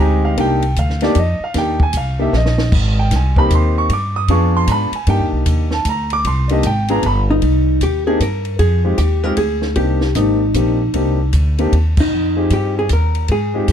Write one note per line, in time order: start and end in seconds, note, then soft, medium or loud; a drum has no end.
0.00 0.37 D2 medium
0.00 0.35 G#3 medium
0.00 0.35 C4 medium
0.00 0.35 D#4 medium
0.00 0.35 G4 loud
0.00 0.24 G#5 medium
0.25 0.38 F5 medium
0.37 0.76 C2 loud
0.37 0.60 A#3 medium
0.37 0.60 D4 medium
0.37 0.60 D#4 medium
0.37 0.60 G4 medium
0.37 0.76 G5 loud
0.37 kick soft
0.37 ride medium
0.62 ride soft
0.76 1.15 D2 medium
0.76 1.02 F5 medium
0.76 kick soft
0.76 hi-hat pedal medium
0.76 ride medium
0.90 snare soft
1.01 1.15 A#3 medium
1.01 1.15 D4 medium
1.01 1.15 D#4 medium
1.01 1.15 G4 loud
1.01 1.16 D5 loud
1.01 snare soft
1.01 ride medium
1.15 1.39 F2 medium
1.15 kick soft
1.15 hi-hat pedal medium
1.15 ride medium
1.19 1.42 D#5 medium
1.40 1.56 F5 medium
1.40 muted upright bass stroke soft
1.54 1.93 D#2 loud
1.54 1.78 A#3 medium
1.54 1.78 D4 medium
1.54 1.78 D#4 medium
1.54 1.78 G4 medium
1.54 kick soft
1.54 snare soft
1.54 ride medium
1.58 1.81 G5 loud
1.80 1.95 G#5 loud
1.80 kick medium
1.93 2.32 C2 medium
1.93 kick soft
1.93 hi-hat pedal medium
1.93 ride medium
1.97 2.20 F5 medium
2.19 2.32 A#3 medium
2.19 2.32 D4 medium
2.19 2.32 D#4 medium
2.19 2.32 G4 medium
2.19 2.34 E5 medium
2.33 2.71 A#1 medium
2.33 2.72 D#5 medium
2.33 snare medium
2.46 snare medium
2.58 snare medium
2.72 3.10 G#1 loud
2.72 kick medium
2.72 crash medium
2.99 3.12 G5 medium
3.11 3.49 C2 medium
3.11 kick soft
3.11 snare soft
3.11 hi-hat pedal medium
3.11 ride medium
3.16 3.38 G#5 medium
3.36 3.88 A#3 medium
3.36 3.87 C4 medium
3.36 3.87 D#4 medium
3.36 3.87 G4 medium
3.36 3.51 B5 loud
3.36 kick medium
3.50 3.88 D#2 loud
3.50 kick soft
3.50 hi-hat pedal medium
3.50 ride medium
3.55 3.77 C6 medium
3.78 3.91 C#6 loud
3.89 4.27 G2 medium
3.89 4.16 D6 medium
3.89 kick soft
3.89 ride medium
4.16 4.29 D#6 loud
4.28 4.66 F2 medium
4.28 4.88 B3 medium
4.28 4.88 D4 medium
4.28 4.88 F4 medium
4.28 4.89 G#4 medium
4.28 4.54 C#6 medium
4.28 kick soft
4.28 ride medium
4.57 4.69 C6 loud
4.67 4.91 G#2 medium
4.67 4.70 A#5 medium
4.67 kick soft
4.67 hi-hat pedal medium
4.67 ride medium
4.72 4.94 B5 loud
4.92 5.08 G#5 medium
4.92 muted upright bass stroke soft
4.92 ride medium
5.07 5.21 G2 loud
5.07 5.66 A#3 medium
5.07 5.67 D4 medium
5.07 5.67 D#4 medium
5.07 5.67 G4 medium
5.07 5.24 G5 loud
5.07 kick soft
5.07 ride medium
5.19 5.32 D#2 medium
5.32 5.45 C2 medium
5.46 5.84 D#2 medium
5.46 kick soft
5.46 hi-hat pedal medium
5.46 ride medium
5.71 5.86 A5 loud
5.71 snare medium
5.85 6.23 D2 medium
5.85 kick soft
5.85 hi-hat pedal medium
5.85 ride medium
5.89 6.11 A#5 loud
6.10 6.25 D6 loud
6.10 ride medium
6.25 6.62 C2 loud
6.25 6.50 C6 medium
6.25 kick soft
6.25 ride medium
6.48 6.63 A#3 medium
6.48 6.63 D4 medium
6.48 6.63 D#4 medium
6.48 6.63 G4 medium
6.48 6.50 D5 medium
6.48 ride medium
6.53 6.65 D#5 medium
6.63 7.01 G#1 medium
6.63 6.89 G5 loud
6.63 kick soft
6.63 hi-hat pedal medium
6.63 ride medium
6.88 7.02 B3 loud
6.88 7.02 D4 medium
6.88 7.02 F4 medium
6.88 7.02 G#4 medium
6.88 7.03 A#5 loud
6.88 ride medium
7.03 7.41 G1 loud
7.03 7.20 B5 loud
7.03 kick soft
7.03 ride medium
7.30 7.84 D#4 loud
7.42 7.80 C2 medium
7.42 kick soft
7.42 ride medium
7.81 8.19 D#2 medium
7.81 8.07 G4 medium
7.81 kick soft
7.81 hi-hat pedal medium
7.81 ride medium
8.07 8.19 A#3 medium
8.07 8.19 C4 medium
8.07 8.19 D4 medium
8.07 8.19 D#4 medium
8.07 8.19 G4 medium
8.07 8.21 G#4 loud
8.20 8.58 G2 medium
8.20 8.59 A#4 medium
8.20 kick soft
8.20 hi-hat pedal medium
8.20 ride medium
8.45 ride soft
8.59 8.97 F2 loud
8.59 8.97 G#4 loud
8.59 kick soft
8.59 ride medium
8.85 8.97 G#3 medium
8.85 8.97 C4 medium
8.85 8.97 D#4 medium
8.85 8.97 F4 medium
8.85 8.97 G4 medium
8.98 9.36 D#2 medium
8.98 9.24 G4 medium
8.98 kick soft
8.98 hi-hat pedal medium
8.98 ride medium
9.24 9.36 G#3 medium
9.24 9.36 C4 medium
9.24 9.36 D#4 medium
9.24 9.36 F4 medium
9.24 9.37 G4 medium
9.24 9.37 A#4 loud
9.37 9.75 D2 medium
9.37 9.74 G#4 medium
9.37 kick soft
9.37 ride medium
9.62 snare soft
9.76 10.14 C2 medium
9.76 9.99 A#3 medium
9.76 9.99 C4 medium
9.76 9.99 D4 medium
9.76 9.99 D#4 medium
9.76 10.13 G4 medium
9.76 9.99 G4 medium
9.76 kick soft
9.76 ride medium
10.01 snare medium
10.15 10.54 G#1 medium
10.15 10.38 A#3 medium
10.15 10.39 C4 medium
10.15 10.38 D4 medium
10.15 11.29 D#4 medium
10.15 10.39 D#4 medium
10.15 10.39 G4 medium
10.15 kick soft
10.15 hi-hat pedal medium
10.15 ride medium
10.54 10.93 A#1 medium
10.54 10.78 A#3 medium
10.54 10.78 C4 medium
10.54 10.78 D4 medium
10.54 10.78 D#4 medium
10.54 10.78 G4 medium
10.54 kick soft
10.54 hi-hat pedal medium
10.54 ride medium
10.94 11.32 C2 medium
10.94 11.17 A#3 medium
10.94 11.17 C4 medium
10.94 11.17 D4 medium
10.94 11.17 D#4 medium
10.94 11.17 G4 medium
10.94 kick soft
10.94 ride medium
11.33 11.71 D2 medium
11.33 kick soft
11.33 hi-hat pedal medium
11.33 ride medium
11.58 11.71 A#3 medium
11.58 11.71 C4 medium
11.58 11.71 D4 medium
11.58 11.71 D#4 medium
11.58 11.72 G4 medium
11.58 ride soft
11.72 12.10 D#2 medium
11.72 kick soft
11.72 ride medium
11.97 12.54 D#4 medium
11.97 kick medium
11.97 crash medium
12.12 12.50 F2 medium
12.36 12.87 C4 medium
12.36 12.87 D#4 medium
12.36 12.87 F4 medium
12.36 12.88 G4 medium
12.36 12.87 G#4 medium
12.50 12.89 G2 medium
12.50 12.76 G4 medium
12.50 kick soft
12.50 hi-hat pedal soft
12.50 ride medium
12.79 12.91 G#4 loud
12.89 13.28 D#2 medium
12.89 13.31 A#4 medium
12.89 kick soft
12.89 hi-hat pedal soft
12.89 ride medium
13.15 ride soft
13.28 13.67 G#2 medium
13.28 13.71 G#4 loud
13.28 kick soft
13.28 ride medium
13.54 13.67 G#3 medium
13.54 13.67 C4 medium
13.54 13.67 D#4 medium
13.54 13.67 F4 medium
13.54 13.68 G4 medium
13.68 13.72 G2 medium
13.68 kick soft
13.68 hi-hat pedal medium
13.68 ride medium